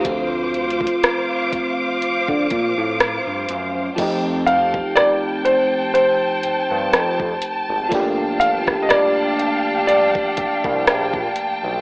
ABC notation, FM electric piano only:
X:1
M:4/4
L:1/8
Q:"Swing 16ths" 1/4=61
K:Fmix
V:1 name="FM electric piano"
F6 z2 | [F,A,CEG]8 | [F,A,B,DG]8 |]
V:2 name="FM electric piano"
[F,A,C]8 | z8 | z8 |]